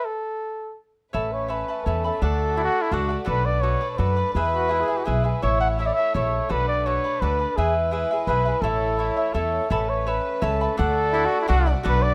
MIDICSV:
0, 0, Header, 1, 6, 480
1, 0, Start_track
1, 0, Key_signature, 3, "major"
1, 0, Tempo, 363636
1, 57, Time_signature, 3, 2, 24, 8
1, 2457, Tempo, 356506
1, 16299, End_track
2, 0, Start_track
2, 0, Title_t, "Cavaquinho"
2, 0, Program_c, 0, 24
2, 1493, Note_on_c, 0, 73, 61
2, 1503, Note_on_c, 0, 76, 73
2, 1511, Note_on_c, 0, 83, 64
2, 1512, Note_on_c, 0, 81, 66
2, 1943, Note_off_c, 0, 73, 0
2, 1952, Note_off_c, 0, 76, 0
2, 1958, Note_on_c, 0, 73, 50
2, 1965, Note_off_c, 0, 83, 0
2, 1968, Note_on_c, 0, 76, 48
2, 1972, Note_off_c, 0, 81, 0
2, 1977, Note_on_c, 0, 81, 50
2, 1981, Note_on_c, 0, 83, 59
2, 2203, Note_off_c, 0, 83, 0
2, 2214, Note_off_c, 0, 73, 0
2, 2214, Note_off_c, 0, 81, 0
2, 2218, Note_off_c, 0, 76, 0
2, 2219, Note_on_c, 0, 83, 44
2, 2229, Note_on_c, 0, 81, 42
2, 2240, Note_on_c, 0, 76, 34
2, 2452, Note_off_c, 0, 76, 0
2, 2453, Note_on_c, 0, 73, 59
2, 2455, Note_off_c, 0, 83, 0
2, 2456, Note_off_c, 0, 81, 0
2, 2468, Note_on_c, 0, 76, 61
2, 2472, Note_on_c, 0, 81, 56
2, 2482, Note_on_c, 0, 83, 63
2, 2685, Note_off_c, 0, 83, 0
2, 2698, Note_off_c, 0, 81, 0
2, 2699, Note_off_c, 0, 73, 0
2, 2701, Note_off_c, 0, 76, 0
2, 2701, Note_on_c, 0, 83, 42
2, 2714, Note_on_c, 0, 81, 43
2, 2717, Note_on_c, 0, 76, 39
2, 2934, Note_on_c, 0, 62, 65
2, 2935, Note_off_c, 0, 83, 0
2, 2936, Note_off_c, 0, 76, 0
2, 2940, Note_on_c, 0, 74, 75
2, 2941, Note_on_c, 0, 69, 61
2, 2943, Note_off_c, 0, 81, 0
2, 2951, Note_on_c, 0, 78, 69
2, 3385, Note_off_c, 0, 62, 0
2, 3400, Note_off_c, 0, 69, 0
2, 3400, Note_off_c, 0, 74, 0
2, 3401, Note_on_c, 0, 62, 50
2, 3405, Note_off_c, 0, 78, 0
2, 3416, Note_on_c, 0, 69, 54
2, 3416, Note_on_c, 0, 74, 53
2, 3421, Note_on_c, 0, 78, 60
2, 3870, Note_off_c, 0, 62, 0
2, 3880, Note_off_c, 0, 69, 0
2, 3886, Note_off_c, 0, 74, 0
2, 3886, Note_on_c, 0, 62, 62
2, 3888, Note_off_c, 0, 78, 0
2, 3897, Note_on_c, 0, 69, 66
2, 3900, Note_on_c, 0, 74, 84
2, 3904, Note_on_c, 0, 78, 81
2, 4092, Note_off_c, 0, 78, 0
2, 4106, Note_off_c, 0, 74, 0
2, 4109, Note_on_c, 0, 78, 57
2, 4113, Note_off_c, 0, 69, 0
2, 4122, Note_on_c, 0, 74, 53
2, 4125, Note_off_c, 0, 62, 0
2, 4129, Note_on_c, 0, 69, 44
2, 4319, Note_off_c, 0, 69, 0
2, 4322, Note_on_c, 0, 66, 75
2, 4327, Note_off_c, 0, 74, 0
2, 4335, Note_on_c, 0, 69, 65
2, 4337, Note_off_c, 0, 78, 0
2, 4339, Note_on_c, 0, 71, 72
2, 4343, Note_on_c, 0, 74, 76
2, 4819, Note_off_c, 0, 66, 0
2, 4825, Note_off_c, 0, 69, 0
2, 4827, Note_off_c, 0, 71, 0
2, 4829, Note_off_c, 0, 74, 0
2, 4841, Note_on_c, 0, 66, 50
2, 4841, Note_on_c, 0, 69, 54
2, 4846, Note_on_c, 0, 71, 60
2, 4856, Note_on_c, 0, 74, 58
2, 5060, Note_off_c, 0, 74, 0
2, 5071, Note_off_c, 0, 71, 0
2, 5076, Note_off_c, 0, 69, 0
2, 5076, Note_on_c, 0, 74, 47
2, 5083, Note_off_c, 0, 66, 0
2, 5088, Note_on_c, 0, 71, 41
2, 5093, Note_on_c, 0, 69, 36
2, 5304, Note_off_c, 0, 69, 0
2, 5313, Note_on_c, 0, 66, 60
2, 5314, Note_off_c, 0, 71, 0
2, 5315, Note_off_c, 0, 74, 0
2, 5320, Note_on_c, 0, 69, 61
2, 5330, Note_on_c, 0, 71, 60
2, 5331, Note_on_c, 0, 74, 64
2, 5538, Note_off_c, 0, 74, 0
2, 5553, Note_off_c, 0, 71, 0
2, 5554, Note_on_c, 0, 74, 48
2, 5561, Note_off_c, 0, 66, 0
2, 5565, Note_off_c, 0, 69, 0
2, 5570, Note_on_c, 0, 71, 45
2, 5580, Note_on_c, 0, 69, 37
2, 5795, Note_off_c, 0, 74, 0
2, 5803, Note_off_c, 0, 71, 0
2, 5809, Note_off_c, 0, 69, 0
2, 5820, Note_on_c, 0, 64, 62
2, 5822, Note_on_c, 0, 68, 62
2, 5833, Note_on_c, 0, 71, 74
2, 5834, Note_on_c, 0, 76, 80
2, 6245, Note_off_c, 0, 64, 0
2, 6253, Note_off_c, 0, 68, 0
2, 6261, Note_on_c, 0, 64, 45
2, 6269, Note_on_c, 0, 68, 57
2, 6272, Note_off_c, 0, 71, 0
2, 6272, Note_off_c, 0, 76, 0
2, 6288, Note_on_c, 0, 71, 57
2, 6289, Note_on_c, 0, 76, 58
2, 6499, Note_off_c, 0, 76, 0
2, 6506, Note_off_c, 0, 71, 0
2, 6515, Note_on_c, 0, 76, 45
2, 6520, Note_off_c, 0, 64, 0
2, 6523, Note_on_c, 0, 71, 46
2, 6524, Note_off_c, 0, 68, 0
2, 6544, Note_on_c, 0, 68, 42
2, 6741, Note_off_c, 0, 68, 0
2, 6756, Note_off_c, 0, 71, 0
2, 6756, Note_on_c, 0, 64, 55
2, 6757, Note_off_c, 0, 76, 0
2, 6757, Note_on_c, 0, 68, 65
2, 6772, Note_on_c, 0, 71, 66
2, 6773, Note_on_c, 0, 76, 65
2, 6987, Note_off_c, 0, 76, 0
2, 6999, Note_off_c, 0, 71, 0
2, 7004, Note_on_c, 0, 76, 46
2, 7007, Note_off_c, 0, 68, 0
2, 7013, Note_off_c, 0, 64, 0
2, 7015, Note_on_c, 0, 71, 49
2, 7023, Note_on_c, 0, 68, 42
2, 7245, Note_off_c, 0, 76, 0
2, 7247, Note_off_c, 0, 68, 0
2, 7252, Note_on_c, 0, 69, 62
2, 7257, Note_off_c, 0, 71, 0
2, 7257, Note_on_c, 0, 64, 63
2, 7261, Note_on_c, 0, 76, 68
2, 7263, Note_on_c, 0, 73, 73
2, 7728, Note_off_c, 0, 64, 0
2, 7739, Note_off_c, 0, 69, 0
2, 7742, Note_off_c, 0, 73, 0
2, 7744, Note_on_c, 0, 64, 51
2, 7748, Note_off_c, 0, 76, 0
2, 7755, Note_on_c, 0, 69, 44
2, 7758, Note_on_c, 0, 73, 47
2, 7769, Note_on_c, 0, 76, 57
2, 7983, Note_off_c, 0, 76, 0
2, 7988, Note_off_c, 0, 73, 0
2, 7992, Note_off_c, 0, 64, 0
2, 7997, Note_off_c, 0, 69, 0
2, 7999, Note_on_c, 0, 76, 37
2, 8004, Note_on_c, 0, 73, 38
2, 8023, Note_on_c, 0, 69, 35
2, 8221, Note_off_c, 0, 69, 0
2, 8222, Note_off_c, 0, 73, 0
2, 8222, Note_on_c, 0, 64, 54
2, 8233, Note_off_c, 0, 76, 0
2, 8237, Note_on_c, 0, 69, 60
2, 8238, Note_on_c, 0, 73, 64
2, 8249, Note_on_c, 0, 76, 58
2, 8681, Note_off_c, 0, 69, 0
2, 8687, Note_off_c, 0, 64, 0
2, 8692, Note_off_c, 0, 73, 0
2, 8692, Note_on_c, 0, 66, 63
2, 8698, Note_on_c, 0, 69, 70
2, 8698, Note_on_c, 0, 71, 73
2, 8702, Note_off_c, 0, 76, 0
2, 8708, Note_on_c, 0, 74, 73
2, 9169, Note_off_c, 0, 66, 0
2, 9179, Note_off_c, 0, 69, 0
2, 9182, Note_off_c, 0, 71, 0
2, 9185, Note_on_c, 0, 66, 52
2, 9188, Note_off_c, 0, 74, 0
2, 9196, Note_on_c, 0, 69, 58
2, 9198, Note_on_c, 0, 71, 54
2, 9201, Note_on_c, 0, 74, 64
2, 9414, Note_off_c, 0, 74, 0
2, 9422, Note_off_c, 0, 71, 0
2, 9429, Note_off_c, 0, 66, 0
2, 9430, Note_on_c, 0, 74, 47
2, 9435, Note_off_c, 0, 69, 0
2, 9438, Note_on_c, 0, 71, 47
2, 9458, Note_on_c, 0, 69, 31
2, 9660, Note_off_c, 0, 69, 0
2, 9663, Note_off_c, 0, 74, 0
2, 9668, Note_off_c, 0, 71, 0
2, 9674, Note_on_c, 0, 66, 56
2, 9676, Note_on_c, 0, 69, 70
2, 9684, Note_on_c, 0, 71, 70
2, 9688, Note_on_c, 0, 74, 70
2, 9881, Note_off_c, 0, 74, 0
2, 9897, Note_on_c, 0, 74, 48
2, 9900, Note_off_c, 0, 71, 0
2, 9908, Note_off_c, 0, 69, 0
2, 9910, Note_off_c, 0, 66, 0
2, 9916, Note_on_c, 0, 71, 41
2, 9924, Note_on_c, 0, 69, 40
2, 10136, Note_off_c, 0, 74, 0
2, 10146, Note_off_c, 0, 71, 0
2, 10149, Note_off_c, 0, 69, 0
2, 10150, Note_on_c, 0, 64, 74
2, 10159, Note_on_c, 0, 68, 70
2, 10160, Note_on_c, 0, 71, 78
2, 10163, Note_on_c, 0, 76, 77
2, 10598, Note_off_c, 0, 64, 0
2, 10598, Note_off_c, 0, 68, 0
2, 10604, Note_on_c, 0, 64, 53
2, 10608, Note_off_c, 0, 71, 0
2, 10614, Note_on_c, 0, 68, 62
2, 10623, Note_off_c, 0, 76, 0
2, 10624, Note_on_c, 0, 71, 64
2, 10629, Note_on_c, 0, 76, 60
2, 10850, Note_off_c, 0, 64, 0
2, 10850, Note_off_c, 0, 76, 0
2, 10855, Note_off_c, 0, 68, 0
2, 10860, Note_off_c, 0, 71, 0
2, 10866, Note_on_c, 0, 76, 58
2, 10881, Note_on_c, 0, 71, 44
2, 10891, Note_on_c, 0, 68, 46
2, 11093, Note_off_c, 0, 68, 0
2, 11093, Note_off_c, 0, 76, 0
2, 11094, Note_off_c, 0, 71, 0
2, 11099, Note_on_c, 0, 64, 65
2, 11110, Note_on_c, 0, 68, 62
2, 11110, Note_on_c, 0, 71, 72
2, 11125, Note_on_c, 0, 76, 72
2, 11315, Note_off_c, 0, 76, 0
2, 11323, Note_off_c, 0, 71, 0
2, 11331, Note_on_c, 0, 76, 48
2, 11335, Note_off_c, 0, 64, 0
2, 11339, Note_on_c, 0, 71, 49
2, 11340, Note_off_c, 0, 68, 0
2, 11359, Note_on_c, 0, 68, 40
2, 11565, Note_off_c, 0, 76, 0
2, 11569, Note_off_c, 0, 71, 0
2, 11570, Note_off_c, 0, 68, 0
2, 11575, Note_on_c, 0, 69, 63
2, 11580, Note_on_c, 0, 73, 73
2, 11581, Note_on_c, 0, 64, 72
2, 11592, Note_on_c, 0, 76, 73
2, 12035, Note_off_c, 0, 64, 0
2, 12051, Note_on_c, 0, 64, 50
2, 12052, Note_off_c, 0, 73, 0
2, 12053, Note_off_c, 0, 69, 0
2, 12053, Note_off_c, 0, 76, 0
2, 12059, Note_on_c, 0, 69, 49
2, 12068, Note_on_c, 0, 73, 56
2, 12069, Note_on_c, 0, 76, 59
2, 12275, Note_off_c, 0, 76, 0
2, 12284, Note_off_c, 0, 73, 0
2, 12291, Note_on_c, 0, 76, 52
2, 12292, Note_off_c, 0, 69, 0
2, 12293, Note_off_c, 0, 64, 0
2, 12300, Note_on_c, 0, 73, 37
2, 12308, Note_on_c, 0, 69, 39
2, 12519, Note_off_c, 0, 69, 0
2, 12521, Note_off_c, 0, 73, 0
2, 12531, Note_off_c, 0, 76, 0
2, 12531, Note_on_c, 0, 64, 68
2, 12535, Note_on_c, 0, 69, 70
2, 12537, Note_on_c, 0, 73, 73
2, 12549, Note_on_c, 0, 76, 69
2, 12997, Note_off_c, 0, 73, 0
2, 13008, Note_off_c, 0, 64, 0
2, 13008, Note_off_c, 0, 76, 0
2, 13013, Note_on_c, 0, 73, 77
2, 13019, Note_off_c, 0, 69, 0
2, 13024, Note_on_c, 0, 76, 63
2, 13030, Note_on_c, 0, 81, 74
2, 13033, Note_on_c, 0, 83, 79
2, 13487, Note_off_c, 0, 73, 0
2, 13497, Note_off_c, 0, 76, 0
2, 13503, Note_on_c, 0, 73, 59
2, 13507, Note_off_c, 0, 83, 0
2, 13509, Note_off_c, 0, 81, 0
2, 13514, Note_on_c, 0, 76, 50
2, 13514, Note_on_c, 0, 81, 59
2, 13523, Note_on_c, 0, 83, 60
2, 13958, Note_off_c, 0, 73, 0
2, 13961, Note_off_c, 0, 76, 0
2, 13974, Note_on_c, 0, 73, 65
2, 13977, Note_on_c, 0, 76, 72
2, 13985, Note_off_c, 0, 83, 0
2, 13992, Note_off_c, 0, 81, 0
2, 13997, Note_on_c, 0, 81, 69
2, 14001, Note_on_c, 0, 83, 79
2, 14219, Note_off_c, 0, 83, 0
2, 14224, Note_off_c, 0, 81, 0
2, 14229, Note_off_c, 0, 73, 0
2, 14230, Note_off_c, 0, 76, 0
2, 14235, Note_on_c, 0, 83, 53
2, 14240, Note_on_c, 0, 81, 45
2, 14250, Note_on_c, 0, 76, 39
2, 14453, Note_off_c, 0, 76, 0
2, 14455, Note_off_c, 0, 81, 0
2, 14455, Note_on_c, 0, 62, 75
2, 14459, Note_on_c, 0, 69, 73
2, 14461, Note_on_c, 0, 74, 79
2, 14469, Note_off_c, 0, 83, 0
2, 14474, Note_on_c, 0, 78, 86
2, 14927, Note_off_c, 0, 62, 0
2, 14935, Note_off_c, 0, 69, 0
2, 14944, Note_off_c, 0, 74, 0
2, 14944, Note_on_c, 0, 62, 51
2, 14951, Note_off_c, 0, 78, 0
2, 14951, Note_on_c, 0, 69, 64
2, 14958, Note_on_c, 0, 74, 61
2, 14965, Note_on_c, 0, 78, 62
2, 15385, Note_off_c, 0, 62, 0
2, 15393, Note_off_c, 0, 69, 0
2, 15394, Note_off_c, 0, 74, 0
2, 15400, Note_off_c, 0, 78, 0
2, 15401, Note_on_c, 0, 62, 77
2, 15410, Note_on_c, 0, 69, 69
2, 15410, Note_on_c, 0, 74, 76
2, 15416, Note_on_c, 0, 78, 83
2, 15632, Note_off_c, 0, 78, 0
2, 15647, Note_off_c, 0, 74, 0
2, 15648, Note_on_c, 0, 78, 63
2, 15655, Note_off_c, 0, 62, 0
2, 15656, Note_off_c, 0, 69, 0
2, 15663, Note_on_c, 0, 74, 58
2, 15672, Note_on_c, 0, 69, 49
2, 15882, Note_off_c, 0, 69, 0
2, 15884, Note_on_c, 0, 66, 74
2, 15891, Note_off_c, 0, 78, 0
2, 15892, Note_off_c, 0, 74, 0
2, 15898, Note_on_c, 0, 69, 83
2, 15900, Note_on_c, 0, 71, 77
2, 15908, Note_on_c, 0, 74, 96
2, 16299, Note_off_c, 0, 66, 0
2, 16299, Note_off_c, 0, 69, 0
2, 16299, Note_off_c, 0, 71, 0
2, 16299, Note_off_c, 0, 74, 0
2, 16299, End_track
3, 0, Start_track
3, 0, Title_t, "Trumpet"
3, 0, Program_c, 1, 56
3, 64, Note_on_c, 1, 69, 80
3, 1024, Note_off_c, 1, 69, 0
3, 1519, Note_on_c, 1, 69, 69
3, 1756, Note_on_c, 1, 73, 68
3, 1775, Note_off_c, 1, 69, 0
3, 1986, Note_on_c, 1, 71, 65
3, 2005, Note_off_c, 1, 73, 0
3, 2445, Note_on_c, 1, 69, 67
3, 2465, Note_off_c, 1, 71, 0
3, 2695, Note_off_c, 1, 69, 0
3, 2729, Note_on_c, 1, 69, 74
3, 2934, Note_off_c, 1, 69, 0
3, 2960, Note_on_c, 1, 69, 89
3, 4081, Note_off_c, 1, 69, 0
3, 4361, Note_on_c, 1, 71, 93
3, 4603, Note_on_c, 1, 74, 86
3, 4624, Note_off_c, 1, 71, 0
3, 4813, Note_on_c, 1, 73, 88
3, 4833, Note_off_c, 1, 74, 0
3, 5215, Note_off_c, 1, 73, 0
3, 5215, Note_on_c, 1, 73, 64
3, 5306, Note_on_c, 1, 71, 84
3, 5327, Note_off_c, 1, 73, 0
3, 5783, Note_off_c, 1, 71, 0
3, 5791, Note_on_c, 1, 71, 93
3, 6963, Note_off_c, 1, 71, 0
3, 7257, Note_on_c, 1, 73, 84
3, 7490, Note_off_c, 1, 73, 0
3, 7498, Note_on_c, 1, 78, 86
3, 7608, Note_off_c, 1, 78, 0
3, 7738, Note_on_c, 1, 76, 92
3, 7847, Note_on_c, 1, 74, 74
3, 7867, Note_off_c, 1, 76, 0
3, 7946, Note_on_c, 1, 76, 101
3, 7966, Note_off_c, 1, 74, 0
3, 8234, Note_off_c, 1, 76, 0
3, 8245, Note_on_c, 1, 73, 79
3, 8722, Note_on_c, 1, 71, 91
3, 8742, Note_off_c, 1, 73, 0
3, 8936, Note_off_c, 1, 71, 0
3, 8944, Note_on_c, 1, 74, 91
3, 9187, Note_on_c, 1, 73, 91
3, 9208, Note_off_c, 1, 74, 0
3, 9654, Note_on_c, 1, 71, 88
3, 9674, Note_off_c, 1, 73, 0
3, 10137, Note_on_c, 1, 68, 82
3, 10157, Note_off_c, 1, 71, 0
3, 10381, Note_off_c, 1, 68, 0
3, 11095, Note_on_c, 1, 71, 93
3, 11550, Note_on_c, 1, 69, 92
3, 11570, Note_off_c, 1, 71, 0
3, 12524, Note_off_c, 1, 69, 0
3, 13031, Note_on_c, 1, 69, 82
3, 13271, Note_on_c, 1, 73, 75
3, 13291, Note_off_c, 1, 69, 0
3, 13527, Note_on_c, 1, 71, 70
3, 13547, Note_off_c, 1, 73, 0
3, 13993, Note_on_c, 1, 69, 73
3, 14013, Note_off_c, 1, 71, 0
3, 14466, Note_off_c, 1, 69, 0
3, 14474, Note_on_c, 1, 69, 101
3, 15613, Note_off_c, 1, 69, 0
3, 15913, Note_on_c, 1, 71, 103
3, 16144, Note_on_c, 1, 74, 93
3, 16164, Note_off_c, 1, 71, 0
3, 16299, Note_off_c, 1, 74, 0
3, 16299, End_track
4, 0, Start_track
4, 0, Title_t, "Trumpet"
4, 0, Program_c, 2, 56
4, 3410, Note_on_c, 2, 64, 87
4, 3489, Note_off_c, 2, 64, 0
4, 3497, Note_on_c, 2, 66, 94
4, 3740, Note_on_c, 2, 64, 86
4, 3760, Note_off_c, 2, 66, 0
4, 3896, Note_on_c, 2, 66, 83
4, 3916, Note_off_c, 2, 64, 0
4, 4246, Note_off_c, 2, 66, 0
4, 6061, Note_on_c, 2, 66, 78
4, 6284, Note_on_c, 2, 64, 81
4, 6304, Note_off_c, 2, 66, 0
4, 6418, Note_on_c, 2, 68, 84
4, 6438, Note_off_c, 2, 64, 0
4, 6648, Note_on_c, 2, 66, 72
4, 6668, Note_off_c, 2, 68, 0
4, 6743, Note_on_c, 2, 68, 68
4, 6763, Note_off_c, 2, 66, 0
4, 7127, Note_off_c, 2, 68, 0
4, 12028, Note_on_c, 2, 64, 77
4, 12514, Note_on_c, 2, 69, 87
4, 12535, Note_off_c, 2, 64, 0
4, 13013, Note_off_c, 2, 69, 0
4, 14927, Note_on_c, 2, 64, 97
4, 15100, Note_on_c, 2, 66, 91
4, 15120, Note_off_c, 2, 64, 0
4, 15303, Note_off_c, 2, 66, 0
4, 15311, Note_on_c, 2, 64, 91
4, 15405, Note_off_c, 2, 64, 0
4, 15413, Note_on_c, 2, 66, 84
4, 15752, Note_off_c, 2, 66, 0
4, 16299, End_track
5, 0, Start_track
5, 0, Title_t, "Violin section"
5, 0, Program_c, 3, 48
5, 1491, Note_on_c, 3, 71, 71
5, 1502, Note_on_c, 3, 57, 71
5, 1502, Note_on_c, 3, 61, 62
5, 2915, Note_off_c, 3, 71, 0
5, 2920, Note_off_c, 3, 61, 0
5, 2938, Note_on_c, 3, 74, 68
5, 2940, Note_on_c, 3, 66, 65
5, 4344, Note_off_c, 3, 74, 0
5, 4345, Note_off_c, 3, 66, 0
5, 4374, Note_on_c, 3, 71, 86
5, 4375, Note_on_c, 3, 62, 68
5, 5756, Note_off_c, 3, 57, 0
5, 5795, Note_off_c, 3, 62, 0
5, 5819, Note_on_c, 3, 56, 70
5, 5820, Note_on_c, 3, 64, 75
5, 7242, Note_off_c, 3, 71, 0
5, 7257, Note_off_c, 3, 56, 0
5, 7284, Note_on_c, 3, 57, 66
5, 7284, Note_on_c, 3, 73, 76
5, 8690, Note_off_c, 3, 64, 0
5, 8707, Note_off_c, 3, 73, 0
5, 8720, Note_on_c, 3, 62, 61
5, 8727, Note_on_c, 3, 71, 72
5, 10122, Note_off_c, 3, 57, 0
5, 10131, Note_off_c, 3, 62, 0
5, 10134, Note_off_c, 3, 71, 0
5, 10159, Note_on_c, 3, 71, 79
5, 10161, Note_on_c, 3, 64, 69
5, 10168, Note_on_c, 3, 56, 67
5, 11559, Note_off_c, 3, 71, 0
5, 11560, Note_on_c, 3, 73, 76
5, 11564, Note_off_c, 3, 56, 0
5, 11566, Note_on_c, 3, 57, 71
5, 13003, Note_off_c, 3, 64, 0
5, 13004, Note_off_c, 3, 73, 0
5, 13007, Note_off_c, 3, 57, 0
5, 13025, Note_on_c, 3, 71, 84
5, 13027, Note_on_c, 3, 57, 67
5, 13027, Note_on_c, 3, 61, 68
5, 14462, Note_off_c, 3, 61, 0
5, 14462, Note_off_c, 3, 71, 0
5, 14467, Note_on_c, 3, 66, 64
5, 14472, Note_on_c, 3, 74, 82
5, 15883, Note_off_c, 3, 66, 0
5, 15885, Note_off_c, 3, 74, 0
5, 15936, Note_on_c, 3, 62, 78
5, 15940, Note_on_c, 3, 71, 100
5, 16299, Note_off_c, 3, 57, 0
5, 16299, Note_off_c, 3, 62, 0
5, 16299, Note_off_c, 3, 71, 0
5, 16299, End_track
6, 0, Start_track
6, 0, Title_t, "Upright bass"
6, 0, Program_c, 4, 32
6, 1511, Note_on_c, 4, 33, 79
6, 2129, Note_off_c, 4, 33, 0
6, 2460, Note_on_c, 4, 40, 82
6, 2770, Note_off_c, 4, 40, 0
6, 2939, Note_on_c, 4, 38, 86
6, 3553, Note_off_c, 4, 38, 0
6, 3877, Note_on_c, 4, 37, 92
6, 4187, Note_off_c, 4, 37, 0
6, 4360, Note_on_c, 4, 35, 93
6, 4984, Note_off_c, 4, 35, 0
6, 5322, Note_on_c, 4, 42, 83
6, 5634, Note_off_c, 4, 42, 0
6, 5806, Note_on_c, 4, 40, 86
6, 6436, Note_off_c, 4, 40, 0
6, 6786, Note_on_c, 4, 35, 90
6, 7100, Note_off_c, 4, 35, 0
6, 7268, Note_on_c, 4, 33, 84
6, 7895, Note_off_c, 4, 33, 0
6, 8229, Note_on_c, 4, 34, 94
6, 8541, Note_off_c, 4, 34, 0
6, 8709, Note_on_c, 4, 35, 85
6, 9330, Note_off_c, 4, 35, 0
6, 9670, Note_on_c, 4, 38, 88
6, 9978, Note_off_c, 4, 38, 0
6, 10153, Note_on_c, 4, 40, 78
6, 10764, Note_off_c, 4, 40, 0
6, 11089, Note_on_c, 4, 35, 93
6, 11398, Note_off_c, 4, 35, 0
6, 11553, Note_on_c, 4, 33, 89
6, 12185, Note_off_c, 4, 33, 0
6, 12535, Note_on_c, 4, 40, 84
6, 12852, Note_off_c, 4, 40, 0
6, 13019, Note_on_c, 4, 33, 89
6, 13651, Note_off_c, 4, 33, 0
6, 13983, Note_on_c, 4, 37, 102
6, 14299, Note_off_c, 4, 37, 0
6, 14483, Note_on_c, 4, 38, 99
6, 15099, Note_off_c, 4, 38, 0
6, 15428, Note_on_c, 4, 36, 102
6, 15736, Note_off_c, 4, 36, 0
6, 15913, Note_on_c, 4, 35, 104
6, 16299, Note_off_c, 4, 35, 0
6, 16299, End_track
0, 0, End_of_file